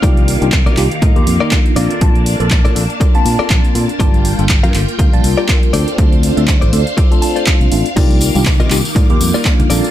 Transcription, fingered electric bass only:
X:1
M:4/4
L:1/16
Q:"Swing 16ths" 1/4=121
K:Cdor
V:1 name="Fingered electric bass" clef=bass
C,,3 C,,2 C, C,, z A,, E,, F,, z3 B,,, z | B,,,3 B,,,2 B,, B,,, z3 B,, z B,,, z B,, z | G,,,3 G,,,2 G,, G,,, z D,, B,,, C,, z3 D,, z | D,,3 D,,2 A,,, D,, z6 C,, A,,, z |
C,,3 C,,2 C, C,, z A,, E,, F,, z3 B,,, z |]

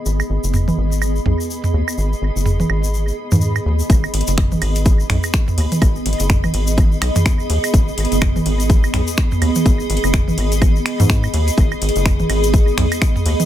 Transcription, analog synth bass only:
X:1
M:4/4
L:1/16
Q:"Swing 16ths" 1/4=125
K:G#m
V:1 name="Analog synth bass" clef=bass
G,,, z G,,, F,,,2 z G,,,3 z B,,, z3 D,, z | G,,, z G,,, F,,,2 z G,,,3 z2 G,,2 z D,, z | G,,, z G,,, F,,,2 z G,,,3 z B,,, z3 D,, z | G,,, z G,,, F,,,2 z G,,,3 z B,,, z3 D,, z |
G,,, z G,,, F,,,2 z G,,,3 z B,,, z3 D,, z | G,,, z G,,, F,,,2 z G,,,3 z2 G,,2 z D,, z | G,,, z G,,, F,,,2 z G,,,3 z B,,, z3 D,, z |]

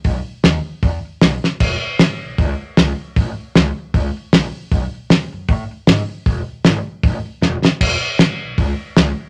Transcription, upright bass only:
X:1
M:4/4
L:1/8
Q:"Swing" 1/4=155
K:E
V:1 name="Upright bass" clef=bass
B,,, z D,, z E,, z B,,, z | E,,, z G,,, B,,, C,, z C,, z | A,,, z C,, z C,, z ^A,,, z | B,,, z D,, F,, A,, z G,, z |
E,,, z G,,, z A,,, z E,,, z | E,,, z G,,, B,,, C,, z C,, z |]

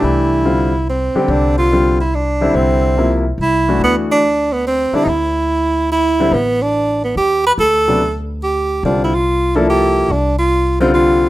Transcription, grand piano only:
X:1
M:3/4
L:1/8
Q:"Swing" 1/4=143
K:Clyd
V:1 name="Grand piano"
[E,A,DG]2 [D,G,C=F] z2 [D,G,CG]- | [D,G,CG]2 [D,G,C=F] z2 [D,G,CE]- | [D,G,CE]2 [C,=F,_B,E] z2 [E,A,D^F]- | [E,A,DF]2 z3 [D,G,CE] |
z4 z [D,G,CE] | z6 | z [C,F,B,D] z4 | [D,G,C=F] z2 [=F,_B,EA]3 |
z3 [D,G,C=F]3 |]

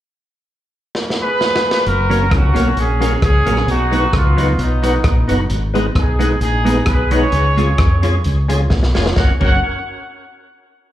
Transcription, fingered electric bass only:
X:1
M:4/4
L:1/8
Q:"Swing" 1/4=132
K:F#
V:1 name="Fingered electric bass" clef=bass
z8 | F,,,2 C,, B,,, A,,,2 C,, A,,, | B,,,2 C,,2 B,,,2 A,,, F,,, | G,,,2 B,,,2 A,,,2 B,,,2 |
C,,2 E,,2 C,,2 B,,, E,,, | F,,, F,,, z6 |]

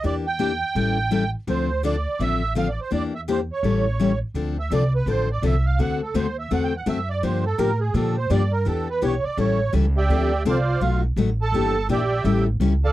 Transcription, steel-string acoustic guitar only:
X:1
M:4/4
L:1/16
Q:"Swing" 1/4=167
K:Dm
V:1 name="Steel-string acoustic guitar"
[E,B,DG]2 z2 [E,B,DG] z3 [E,G,^CEA]2 z2 [E,G,CEA] z3 | [D,F,CDA]2 z2 [D,F,CDA] z3 [D,F,CDA]2 z2 [D,F,CDA] z3 | [E,B,DG]2 z2 [E,B,DG] z3 [E,G,^CEA]2 z2 [E,G,CEA] z3 | [D,F,CDA]2 z2 [D,F,CDA] z3 [D,F,CDA]2 z2 [D,F,CDA] z3 |
[D,A,C^FA]2 z2 [D,A,CFA] z3 [D,A,CFA]2 z2 [D,A,CFA] z3 | [D,F,B,DG]2 z2 [D,F,B,DG] z3 [D,F,B,DG]2 z2 [D,F,B,DG] z3 | [E,=B,DG]2 z2 [E,B,DG] z3 [E,G,^CEA]2 z2 [E,G,CEA] z3 | [D,F,CDA]2 z2 [D,F,CDA] z3 [=B,,^F,A,^D^F]2 z2 [B,,F,A,DF] z3 |
[E,B,DG]2 z2 [E,B,DG] z3 [E,G,^CEA]2 z2 [E,G,CEA] z3 |]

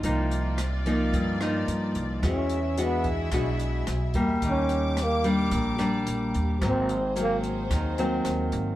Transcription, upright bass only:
X:1
M:4/4
L:1/8
Q:1/4=110
K:Eblyd
V:1 name="Upright bass" clef=bass
C,,4 G,,2 G,, C,, | =E,,4 =B,,,2 B,,, E,, | E,,4 B,,,2 B,,, E,, | _A,,,4 E,,2 E,, A,,, |]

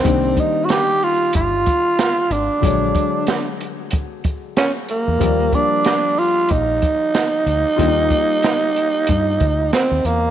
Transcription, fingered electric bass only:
X:1
M:4/4
L:1/16
Q:"Swing 16ths" 1/4=93
K:Eb
V:1 name="Fingered electric bass" clef=bass
C,,2 z6 G,,,2 z4 A,,, z | B,,,2 z12 z _F,, | E,,2 z6 B,,,2 z4 D,, z | E,,2 z6 G,,2 D,,2 z E,, _F,,2 |]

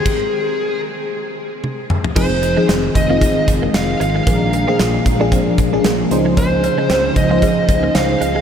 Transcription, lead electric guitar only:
X:1
M:4/4
L:1/8
Q:"Swing 16ths" 1/4=114
K:Fm
V:1 name="Lead electric guitar"
A3 z4 z | c2 z e2 z f f- | f2 z6 | c3 e3 f2 |]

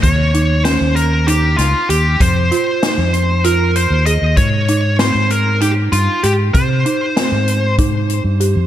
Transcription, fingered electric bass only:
X:1
M:7/8
L:1/16
Q:1/4=97
K:Ab
V:1 name="Fingered electric bass" clef=bass
E,,4- E,, E,,4- E,, D,, z E,,2 | F,,2 z3 F,,6 E,,2 E,, | A,,4- A,, A,,4- A,, G,, z A,,2 | C,2 z3 A,,6 G,,2 F,, |]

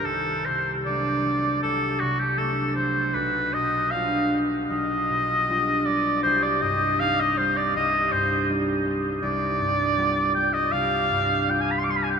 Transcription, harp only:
X:1
M:4/4
L:1/8
Q:1/4=79
K:Gphr
V:1 name="Harp" clef=bass
C,, C, [^F,=A,D] F, C,, C, [F,A,D] F, | =B,,, =B,, [G,DF] G, B,,, B,, [G,DF] G, | C,, G,, [G,CE] G, C,, G,, [G,CE] G, | C,, G,, [G,=B,F] G, C,, G,, [G,B,F] G, |]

